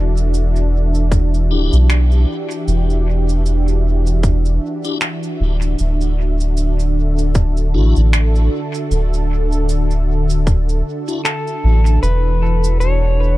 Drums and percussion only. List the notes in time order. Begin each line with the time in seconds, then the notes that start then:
0.17 cabasa
0.34 cabasa
0.56 cabasa
0.95 cabasa
1.12 kick, cabasa
1.34 cabasa
1.73 cabasa
1.90 finger snap, cabasa
2.12 cabasa
2.51 cabasa
2.68 cabasa
2.90 cabasa
3.29 cabasa
3.46 cabasa
3.68 cabasa
4.07 cabasa
4.23 kick, cabasa
4.45 cabasa
4.84 cabasa
5.01 finger snap, cabasa
5.23 cabasa
5.62 cabasa
5.79 cabasa
6.01 cabasa
6.40 cabasa
6.57 cabasa
6.79 cabasa
7.18 cabasa
7.35 kick, cabasa
7.57 cabasa
7.96 cabasa
8.13 finger snap, cabasa
8.35 cabasa
8.74 cabasa
8.91 cabasa
9.14 cabasa
9.52 cabasa
9.69 cabasa
9.91 cabasa
10.30 cabasa
10.47 kick, cabasa
10.69 cabasa
11.08 cabasa
11.25 finger snap, cabasa
11.47 cabasa
11.86 cabasa
12.03 cabasa
12.64 cabasa
12.81 cabasa